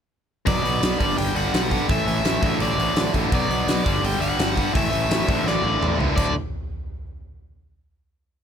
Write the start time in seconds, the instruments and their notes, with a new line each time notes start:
0.46 picked electric bass B1, distorted electric guitar B2 F#3 B3, overdriven electric guitar D5, kick, open hi-hat
0.62 picked electric bass B1, distorted electric guitar B2 F#3 B3, open hi-hat
0.80 picked electric bass B1, distorted electric guitar B2 F#3 B3, snare, open hi-hat
0.98 picked electric bass G1, distorted electric guitar G2 D3 G3, kick, open hi-hat
1.17 picked electric bass G1, distorted electric guitar G2 D3 G3, overdriven electric guitar G5, open hi-hat
1.34 picked electric bass G1, distorted electric guitar G2 D3 G3, overdriven electric guitar F#5, open hi-hat
1.53 picked electric bass B1, distorted electric guitar G2 D3 G3, snare, open hi-hat
1.70 distorted electric guitar G2 D3 G3, kick, open hi-hat
1.88 picked electric bass A1, distorted electric guitar A2 E3 A3, overdriven electric guitar E5, kick, open hi-hat
2.05 picked electric bass A1, distorted electric guitar A2 E3 A3, open hi-hat
2.24 picked electric bass A1, distorted electric guitar A2 E3 A3, snare, open hi-hat
2.42 picked electric bass A1, distorted electric guitar D2 A2 D3, kick, open hi-hat
2.59 picked electric bass A1, distorted electric guitar D2 A2 D3, overdriven electric guitar D5, open hi-hat
2.77 picked electric bass A1, distorted electric guitar D2 A2 D3, open hi-hat
2.95 picked electric bass A1, distorted electric guitar D2 A2 D3, snare, open hi-hat
3.13 picked electric bass A1, distorted electric guitar D2 A2 D3, kick, open hi-hat
3.31 picked electric bass B1, distorted electric guitar B2 F#3 B3, overdriven electric guitar D5, kick, open hi-hat
3.49 picked electric bass B1, distorted electric guitar B2 F#3 B3, open hi-hat
3.66 picked electric bass B1, distorted electric guitar B2 F#3 B3, snare, open hi-hat
3.84 picked electric bass G1, distorted electric guitar G2 D3 G3, kick, open hi-hat
4.01 picked electric bass G1, distorted electric guitar G2 D3 G3, open hi-hat
4.05 overdriven electric guitar G5
4.19 picked electric bass G1, distorted electric guitar G2 D3 G3, overdriven electric guitar F#5, open hi-hat
4.37 picked electric bass G1, distorted electric guitar G2 D3 G3, snare, open hi-hat
4.55 distorted electric guitar G2 D3 G3, kick, open hi-hat
4.73 picked electric bass A1, distorted electric guitar A2 E3 A3, overdriven electric guitar E5, kick, open hi-hat
4.91 picked electric bass A1, distorted electric guitar A2 E3 A3, open hi-hat
5.08 picked electric bass A1, distorted electric guitar A2 E3 A3, snare, open hi-hat
5.26 picked electric bass A1, distorted electric guitar D2 A2 D3, kick, open hi-hat
5.44 picked electric bass A1, distorted electric guitar D2 A2 D3, overdriven electric guitar D5, snare
5.63 picked electric bass A1, distorted electric guitar D2 A2 D3
5.79 picked electric bass A1, distorted electric guitar D2 A2 D3, mid tom
5.97 picked electric bass C#2, distorted electric guitar D2 A2 D3, floor tom
6.15 picked electric bass D1, distorted electric guitar D2 A2 D3, overdriven electric guitar D5, kick, crash